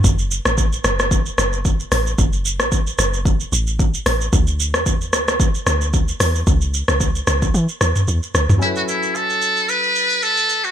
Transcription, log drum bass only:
X:1
M:4/4
L:1/16
Q:"Swing 16ths" 1/4=112
K:F#m
V:1 name="Log drum bass" clef=bass
F,,,3 A,,,3 F,,,4 F,,,4 A,,,2 | F,,,3 A,,,3 F,,,4 A,,,4 A,,,2 | D,,3 E,,3 D,,4 D,,4 E,,2 | C,,3 C,,3 C,,2 E, z E,, z E,, z D,, E,, |
z16 |]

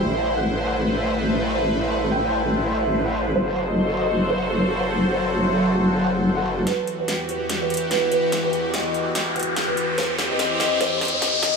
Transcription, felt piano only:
X:1
M:4/4
L:1/16
Q:"Swing 16ths" 1/4=145
K:Em
V:1 name="Felt piano"
e2 z f2 z f2 z e2 z e2 e2 | z e2 z g2 z4 e2 z f2 z | c2 z ^d2 z d2 z c2 z c2 c2 | z c2 z e2 z4 f2 z f2 z |
B2 z B2 z B2 z B2 z B2 B2 | z B2 z ^d2 z4 B2 z B2 z | c2 z ^d2 z d2 c2 z d2 z d2 |]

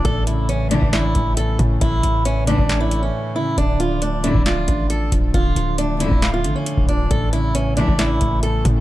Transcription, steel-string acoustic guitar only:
X:1
M:4/4
L:1/16
Q:1/4=136
K:Dm
V:1 name="Steel-string acoustic guitar"
A2 E2 ^C2 D2 E4 A2 z2 | E4 ^C2 D3 E2 C3 E2 | D2 F2 D2 E2 F4 A2 z2 | F4 D2 E3 F2 ^C3 D2 |
A2 E2 ^C2 D2 E4 A2 z2 |]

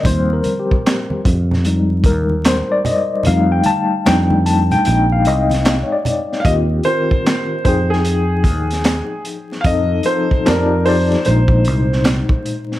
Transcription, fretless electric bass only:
X:1
M:4/4
L:1/16
Q:"Swing 16ths" 1/4=75
K:Fdor
V:1 name="Fretless electric bass" clef=bass
E,,2 z4 F,,4 E,,3 z3 | F,,2 z2 F,,4 B,,,2 C,,3 z3 | E,,2 z4 F,,4 E,,3 z3 | F,,2 z2 F,,4 B,,,2 C,,3 z3 |]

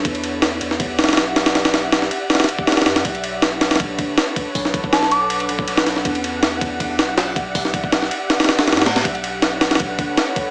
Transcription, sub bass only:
X:1
M:4/4
L:1/8
Q:1/4=160
K:Edor
V:1 name="Sub bass" clef=bass
E,,3 E,,2 B,,,3- | B,,,3 z E,,,3 F,, | B,,,4- B,,, F,,, z2 | B,,,4- B,,, B,,,3 |
E,,3 E,,2 B,,,3- | B,,,3 z E,,,2 A,,2 | B,,,4- B,,, F,,, z2 |]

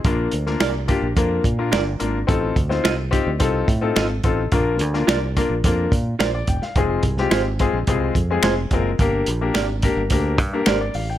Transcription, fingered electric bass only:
X:1
M:4/4
L:1/16
Q:1/4=107
K:Fdor
V:1 name="Fingered electric bass" clef=bass
B,,,2 D,,2 C,,3 B,,, F,,2 B,,2 G,,,2 A,,,2 | =A,,,2 D,,2 C,,3 D,, C,,2 =A,,2 _A,,,2 =A,,,2 | B,,,2 D,,2 C,,3 B,,, F,,2 B,,2 B,,,2 =E,,, z | F,,,2 C,,2 A,,,3 B,,, C,,2 F,,2 F,,,2 _G,,,2 |
G,,,2 B,,,2 A,,,3 G,,, D,,2 G,,2 A,,,2 =A,,,2 |]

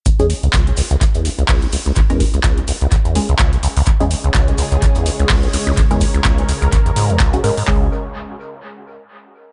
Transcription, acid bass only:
X:1
M:4/4
L:1/16
Q:"Swing 16ths" 1/4=126
K:C#dor
V:1 name="Acid bass" clef=bass
C,, E,, C,, C,, C,, B,,, C,, C,, C,, E,, C,, C,, C,, B,,, C,, C,, | C,, E,, C,, C,, C,, B,,, C,, C,, C,, E,, C,, C,, C,, B,,, C,, C,, | C,, E,, C,, C,, C,, B,,, C,, C,, C,, E,, C,, C,, C,, B,,, C,, C,, | C,, E,, C,, C,, C,, B,,, C,, C,, C,, E,, G,, E,, C,, B,,, G,, G,, |
C,,2 z12 z2 |]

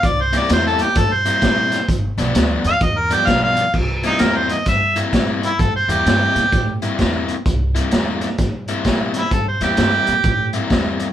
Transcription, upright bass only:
X:1
M:4/4
L:1/8
Q:"Swing" 1/4=129
K:Cmix
V:1 name="Upright bass" clef=bass
C,,2 E,,2 G,,2 B,,2 | G,,, =B,,, D,, F,, E,,2 B,,,2 | C,,2 E,,2 G,,2 B,,2 | G,, E,, G,, B,, A,,2 E,,2 |
C,,2 E,,2 G,,2 B,,2 | G,, E,, G,, B,, A,,2 E,,2 |]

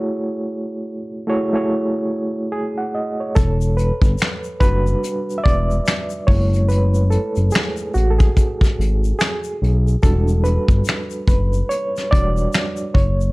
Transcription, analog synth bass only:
X:1
M:4/4
L:1/16
Q:"Swing 16ths" 1/4=72
K:F#phr
V:1 name="Analog synth bass" clef=bass
z16 | E,,,3 G,,, z2 F,,,2 z2 E,,,2 z2 F,,,2- | F,,,3 F,,, z2 A,,,2 z2 ^G,,,2 z2 B,,,2 | E,,,3 G,,, z2 F,,,2 z2 E,,,2 z2 F,,,2 |]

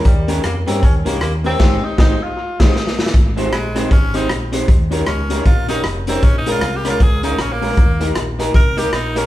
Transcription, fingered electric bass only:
X:1
M:4/4
L:1/8
Q:"Swing" 1/4=156
K:Ab
V:1 name="Fingered electric bass" clef=bass
E,,2 F,, G,, E,, C,, E,,2 | A,,, z A,,, z2 A,,, z2 | A,,,2 B,,,2 A,,,2 B,,,2 | E,,2 D,,2 B,,,2 F,,,2 |
B,,,2 C,,2 D,,2 B,,,2 | E,,2 B,,,2 C,,2 B,,,2 |]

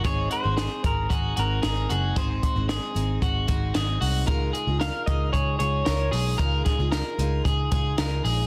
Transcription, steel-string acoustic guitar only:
X:1
M:4/4
L:1/16
Q:1/4=113
K:Abdor
V:1 name="Steel-string acoustic guitar"
[A,,E,A,=CEA]3 [A,CEA]3 [A,CEA]4 [A,CEA]2 [A,CEA]4 | [A,,E,A,=CEA]3 [A,CEA]3 [A,CEA]4 [A,CEA]2 [A,CEA]4 | [D,A,EFA]3 [EFA]3 [A,EFA]4 [A,EFA]2 [A,EFA]4 | [D,A,EFA]3 [EFA]3 [A,EFA]4 [A,EFA]2 [A,EFA]4 |]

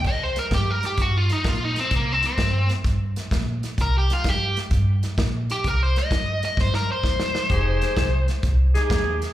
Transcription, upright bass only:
X:1
M:4/4
L:1/8
Q:"Swing" 1/4=129
K:Cm
V:1 name="Upright bass" clef=bass
C,,2 G,,2 G,,2 B,,2 | C,,2 G,,2 G,,2 B,,2 | C,,2 G,,2 G,,2 B,,2 | C,,2 G,,2 G,,2 =E,,2 |
F,,,2 C,,2 C,,2 E,,2 |]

